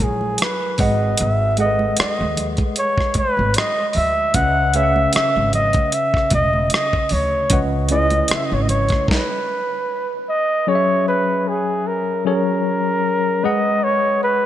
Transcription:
Already playing: F#3 E4 G#4 A4 A#4 F#5
0.00 A#1 G#4, muted conga, high conga
0.21 high conga
0.38 closed hi-hat, muted conga
0.42 B4, cross-stick
0.78 G#1 G#3 G#4 B4 D#5 F#5, kick, open hi-hat, muted conga, low conga
0.82 D#5
1.18 G#1 E5, closed hi-hat
1.57 G#3 G#4 A4 D#5 F#5, closed hi-hat, muted conga, high conga
1.66 B4
1.79 high conga
1.96 D#5, muted upright bass stroke, cross-stick, closed hi-hat, muted conga
2.19 D#2, high conga
2.37 closed hi-hat, low conga
2.57 kick, closed hi-hat, high conga
2.76 C#5, closed hi-hat
2.98 kick, cross-stick
3.14 muted upright bass stroke, kick, closed hi-hat, muted conga, high conga
3.19 B4
3.37 G#1, high conga
3.54 D#5, closed hi-hat, muted conga
3.58 cross-stick
3.90 D#5, open hi-hat
3.95 D2 E5, muted conga, low conga
4.34 C#2 C#3 C#4 B4 D#5 E5 F#5, kick, closed hi-hat, muted conga
4.74 C#3 C#4 B4 C#5 E5 F5, closed hi-hat, high conga
4.83 F#5
4.96 high conga
5.13 E5, muted upright bass stroke, cross-stick, closed hi-hat, muted conga
5.36 G#1, high conga
5.53 D#5, closed hi-hat, muted conga, low conga
5.73 kick, closed hi-hat, high conga
5.92 E5, closed hi-hat, muted conga
6.14 kick, cross-stick
6.30 E1, kick, closed hi-hat, high conga
6.35 D#5
6.53 high conga
6.70 closed hi-hat, muted conga
6.74 D#5, cross-stick
6.93 kick
7.09 D2 C#5, open hi-hat, muted conga, low conga
7.50 C#2 C#3 C#4 B4 D#5 F#5, kick, closed hi-hat, muted conga, low conga
7.89 C#3 C#4 E4 B4 D#5, closed hi-hat, high conga
8.10 closed hi-hat, high conga
8.28 muted upright bass stroke, cross-stick, closed hi-hat
8.35 E5
8.46 D#5
8.52 G#1 C#5, high conga
8.63 D#5
8.69 C#5, closed hi-hat, muted conga, low conga
8.89 kick, cross-stick, closed hi-hat, high conga
9.08 B4, kick, snare
10.29 D#5
10.67 F#3 C#4 G#4 C#5 D#5
10.75 E5
11.08 B4
11.48 G#4
11.87 A#4
12.25 F#3 C#4 G#4 A#4 C#5
13.44 G#3 G#4 B4 D#5 F#5
13.84 C#5
14.23 B4

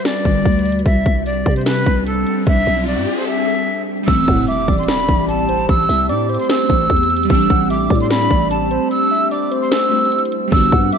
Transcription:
Already playing: G3 F#4 B4
0.00 closed hi-hat
0.05 D5, snare, closed hi-hat
0.25 G1, kick, closed hi-hat
0.45 D2, kick, closed hi-hat
0.52 closed hi-hat
0.59 closed hi-hat
0.66 closed hi-hat
0.72 closed hi-hat
0.79 closed hi-hat
0.85 C2 C4 D4 E5, kick, closed hi-hat, riser
1.06 C2, kick
1.26 D5, closed hi-hat
1.46 C3, kick, closed hi-hat
1.51 closed hi-hat
1.56 C5, closed hi-hat
1.61 closed hi-hat
1.66 B4, snare, closed hi-hat
1.86 C2, kick, closed hi-hat
2.06 A4, closed hi-hat
2.27 closed hi-hat
2.47 C2 E5, kick, closed hi-hat
2.67 B1
2.87 D5, closed hi-hat
2.97 G2
3.07 closed hi-hat
3.17 C5
3.27 E5
4.03 G3 A3
4.07 A1 A3 C4 G4 E6, kick, closed hi-hat, crash, impact
4.13 E4
4.28 A2 F#5, kick
4.48 E5 D6, closed hi-hat
4.68 A1 D5, kick, closed hi-hat
4.73 closed hi-hat
4.78 C6, closed hi-hat
4.83 closed hi-hat
4.88 B5, snare, closed hi-hat
5.08 A1, kick, closed hi-hat
5.28 A5, closed hi-hat
5.49 C5, closed hi-hat
5.69 A1 E6, kick, closed hi-hat
5.89 C2 E5, open hi-hat
6.09 A2 D5 D6, closed hi-hat
6.29 C5, closed hi-hat
6.34 closed hi-hat
6.39 C6, closed hi-hat
6.45 closed hi-hat
6.50 E6, snare, closed hi-hat
6.70 A1, kick, closed hi-hat
6.90 E2, kick, closed hi-hat
6.96 closed hi-hat
7.03 closed hi-hat
7.10 closed hi-hat
7.17 closed hi-hat
7.23 G3, closed hi-hat
7.28 A1 A3 C4 E6, kick, closed hi-hat
7.34 D4
7.50 A1 F#5, kick
7.70 E5 D6, closed hi-hat
7.90 A2 D5, kick, closed hi-hat
7.95 closed hi-hat
8.00 C6, closed hi-hat
8.05 closed hi-hat
8.11 B5, snare, closed hi-hat
8.31 A1, kick, closed hi-hat
8.51 A5, closed hi-hat
8.71 C5, closed hi-hat
8.91 E6, closed hi-hat
9.11 E5
9.31 D5 D6, closed hi-hat
9.51 C5, closed hi-hat
9.62 C6
9.72 E6, snare, closed hi-hat
9.89 G3 A3 C4, closed hi-hat
9.94 E4
9.98 closed hi-hat
10.05 closed hi-hat
10.12 closed hi-hat
10.19 closed hi-hat
10.25 closed hi-hat
10.32 closed hi-hat
10.47 G3 B3
10.52 G1 G3 D4 F#4 B4 E6, kick, closed hi-hat
10.57 F#4
10.72 G2 F#5, kick
10.92 E5 D6, closed hi-hat

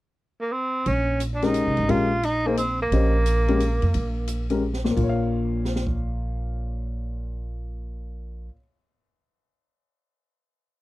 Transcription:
0.41 A#3
0.52 C4
0.86 A#1 C#4, ride
1.20 hi-hat pedal, ride
1.35 D4
1.42 G#3 C#4 D#4 G4 A#4, snare, ride
1.54 hi-hat pedal, ride
1.67 C2
1.77 G#1, ride
1.88 A#1 G#3 C#4 F4 G4 A#4, ride
2.23 D#4, ride
2.46 A#3 D#4 G#4 C5
2.57 C4, hi-hat pedal, ride
2.82 A#3
2.92 A#1 C#4 G4 C5 D#5, ride
3.26 hi-hat pedal, ride
3.48 G#3 C#4 G4 A#4, ride
3.60 hi-hat pedal, ride
3.82 F2, ride
3.94 A#1, ride
4.27 hi-hat pedal, ride
4.50 G#3 C#4 G4 A#4, ride
4.74 snare
4.84 A#2, snare
4.91 A#3
4.97 A#1 F4, kick, crash
5.03 C#5
5.09 F5
5.65 snare
5.76 snare
5.87 kick

